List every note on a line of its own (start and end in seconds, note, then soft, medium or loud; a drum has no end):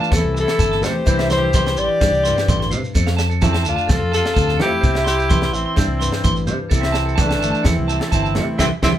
0.00 1.04 E3 medium
0.00 0.82 A3 medium
0.00 0.13 C4 medium
0.00 0.14 D4 medium
0.00 1.07 E4 medium
0.00 0.13 F4 medium
0.00 0.09 A5 medium
0.00 shekere soft
0.11 0.22 E2 medium
0.11 1.07 C4 medium
0.11 0.20 A4 medium
0.11 0.35 A4 medium
0.11 kick medium
0.11 snare medium
0.11 muted conga soft
0.11 high conga medium
0.11 shekere medium
0.16 0.36 E4 medium
0.24 0.44 C2 medium
0.35 1.04 C3 medium
0.35 muted clean electric guitar stroke medium
0.35 muted conga soft
0.35 shekere medium
0.40 0.88 E4 medium
0.40 0.85 A4 medium
0.47 0.56 A4 medium
0.47 snare medium
0.47 shekere soft
0.59 0.83 G1 medium
0.59 0.68 A5 medium
0.59 kick medium
0.59 shekere medium
0.71 0.80 A5 medium
0.71 snare soft
0.82 0.93 C3 medium
0.82 1.04 A3 medium
0.82 0.92 A4 medium
0.82 1.30 C5 loud
0.82 snare medium
0.82 muted conga soft
0.82 high conga medium
0.82 shekere medium
0.86 1.32 G4 medium
1.05 1.77 C2 loud
1.05 1.53 C3 medium
1.05 1.52 E3 medium
1.05 1.77 G3 medium
1.05 2.01 D4 medium
1.05 2.96 E4 medium
1.05 1.16 C5 medium
1.05 kick medium
1.05 muted conga soft
1.05 shekere medium
1.19 1.27 E5 medium
1.19 snare medium
1.19 shekere soft
1.30 1.80 C5 loud
1.30 1.39 C6 medium
1.30 snare medium
1.30 high conga medium
1.30 shekere medium
1.37 1.81 G4 medium
1.44 1.51 C5 medium
1.53 2.48 E3 medium
1.53 1.63 C6 medium
1.53 kick medium
1.53 high conga medium
1.53 shekere medium
1.66 1.74 C6 medium
1.66 snare medium
1.66 shekere soft
1.77 1.88 A1 medium
1.77 2.96 G3 medium
1.77 2.72 D5 loud
1.77 1.87 C6 medium
1.77 shekere medium
1.81 2.73 G4 medium
1.89 muted clean electric guitar stroke medium
2.01 2.11 G2 medium
2.01 2.93 D4 medium
2.01 2.10 C5 medium
2.01 kick medium
2.01 snare medium
2.01 shekere medium
2.11 2.32 C2 medium
2.11 shekere soft
2.24 2.93 G2 medium
2.24 2.33 C6 medium
2.24 snare soft
2.24 muted conga soft
2.24 shekere medium
2.36 2.45 C5 medium
2.36 snare medium
2.36 shekere soft
2.48 2.72 A1 medium
2.48 2.72 D3 medium
2.48 2.58 C6 medium
2.48 kick medium
2.48 high conga medium
2.48 shekere loud
2.60 2.68 C6 medium
2.60 snare soft
2.60 shekere soft
2.70 2.82 C3 medium
2.70 2.80 C5 medium
2.70 muted conga soft
2.70 low conga medium
2.70 shekere medium
2.85 shekere soft
2.95 3.65 F2 medium
2.95 4.81 F2 medium
2.95 3.04 A4 medium
2.95 kick medium
2.95 shekere loud
3.06 3.15 F5 medium
3.06 snare medium
3.06 shekere soft
3.17 3.26 A5 medium
3.17 snare medium
3.17 shekere medium
3.30 3.38 A4 medium
3.30 shekere soft
3.42 4.81 F3 medium
3.42 3.65 C4 medium
3.42 3.65 E4 medium
3.42 3.51 A5 medium
3.42 kick medium
3.42 high conga loud
3.42 shekere medium
3.53 3.62 A5 medium
3.53 snare medium
3.63 3.76 D2 medium
3.63 3.92 D4 medium
3.63 3.73 A5 medium
3.63 shekere medium
3.68 4.61 A3 medium
3.68 3.92 F4 medium
3.76 3.85 A5 medium
3.76 shekere soft
3.88 4.00 C2 medium
3.88 4.14 F4 medium
3.88 3.97 A4 medium
3.88 4.14 A4 loud
3.88 kick medium
3.88 snare medium
3.88 muted conga soft
3.88 high conga medium
3.88 shekere medium
3.92 5.79 C4 medium
4.02 4.22 F2 medium
4.12 4.82 C3 medium
4.12 4.58 A4 loud
4.12 4.21 A5 medium
4.12 snare soft
4.12 muted conga soft
4.12 shekere medium
4.16 4.59 F4 medium
4.23 4.32 A4 medium
4.23 snare medium
4.23 shekere soft
4.34 4.61 D2 medium
4.34 4.44 A5 medium
4.34 kick medium
4.34 shekere medium
4.47 4.56 A5 medium
4.47 snare soft
4.47 shekere soft
4.57 4.70 F3 medium
4.57 4.67 A4 medium
4.57 snare medium
4.57 muted conga soft
4.57 high conga medium
4.62 4.82 A3 medium
4.62 5.05 E4 medium
4.62 5.05 G4 loud
4.81 5.53 C2 loud
4.81 5.31 C3 medium
4.81 4.91 C5 medium
4.81 kick medium
4.81 muted conga soft
4.81 shekere medium
4.93 5.03 E5 medium
4.93 snare medium
4.93 shekere soft
5.04 5.55 G4 loud
5.04 5.14 C6 medium
5.04 snare medium
5.04 shekere medium
5.09 5.56 E4 medium
5.17 5.26 C5 medium
5.17 shekere soft
5.29 7.19 E3 medium
5.29 5.39 C6 medium
5.29 kick medium
5.29 snare soft
5.29 high conga loud
5.29 shekere medium
5.42 5.51 C6 medium
5.42 snare medium
5.53 5.64 A1 medium
5.53 6.49 C4 medium
5.53 6.48 E4 medium
5.53 5.63 C6 medium
5.53 shekere medium
5.66 5.75 C6 medium
5.76 5.87 G2 medium
5.76 6.70 D4 medium
5.76 5.86 C5 medium
5.76 kick medium
5.76 snare medium
5.76 shekere medium
5.87 6.09 C2 medium
6.00 6.69 G2 medium
6.00 6.09 C6 medium
6.00 snare soft
6.00 muted conga soft
6.00 shekere medium
6.12 6.21 C5 medium
6.12 snare medium
6.12 shekere soft
6.24 6.48 A1 medium
6.24 6.33 C6 medium
6.24 kick medium
6.24 high conga medium
6.24 shekere loud
6.36 shekere soft
6.47 6.58 C3 medium
6.47 6.72 G3 medium
6.47 6.57 C5 medium
6.47 muted conga soft
6.47 low conga medium
6.47 shekere medium
6.70 7.41 C2 loud
6.70 7.19 C3 medium
6.70 7.22 E4 medium
6.70 6.80 A4 loud
6.70 kick medium
6.70 muted conga soft
6.70 shekere loud
6.77 7.24 C4 medium
6.77 6.91 E5 medium
6.83 snare medium
6.83 shekere soft
6.92 7.03 A5 medium
6.92 snare medium
6.92 shekere medium
7.06 7.15 A4 medium
7.06 shekere soft
7.16 8.60 E3 medium
7.16 7.26 A5 medium
7.16 kick medium
7.16 snare soft
7.16 high conga medium
7.16 shekere medium
7.21 7.69 A3 medium
7.21 7.68 D4 medium
7.29 7.38 A5 medium
7.29 snare medium
7.40 7.52 G1 medium
7.40 7.50 A5 medium
7.40 shekere medium
7.44 8.37 A3 medium
7.52 7.61 A5 medium
7.52 shekere soft
7.63 7.76 E2 loud
7.63 8.14 E4 medium
7.63 7.73 A4 medium
7.63 kick medium
7.63 snare medium
7.63 muted conga soft
7.63 high conga medium
7.63 shekere medium
7.67 8.12 C4 medium
7.67 muted nylon-string guitar stroke medium
7.79 7.99 C2 medium
7.88 8.61 C3 medium
7.88 7.98 A5 medium
7.88 muted conga soft
7.88 shekere medium
8.00 8.09 A4 medium
8.00 snare medium
8.12 8.39 G1 medium
8.12 8.57 C4 medium
8.12 8.58 E4 medium
8.12 8.21 A5 medium
8.12 kick medium
8.12 shekere medium
8.24 8.33 A5 medium
8.24 shekere soft
8.35 8.48 C3 medium
8.35 8.58 A3 medium
8.35 8.45 A4 medium
8.35 snare medium
8.35 muted conga soft
8.35 high conga medium
8.58 8.69 C2 medium
8.58 8.68 D3 medium
8.58 8.69 E3 loud
8.58 8.68 G3 medium
8.58 8.65 C4 loud
8.58 8.66 E4 loud
8.58 8.67 E5 loud
8.58 8.67 G5 medium
8.58 8.68 C6 medium
8.58 kick medium
8.58 snare medium
8.58 high conga loud
8.58 shekere loud
8.82 8.92 C2 medium
8.82 8.93 D3 medium
8.82 8.93 E3 loud
8.82 8.93 G3 loud
8.82 8.89 C4 medium
8.82 8.90 E4 loud
8.82 8.91 E5 medium
8.82 8.91 G5 medium
8.82 8.91 C6 medium
8.82 kick medium
8.82 snare medium
8.82 high conga loud
8.82 shekere loud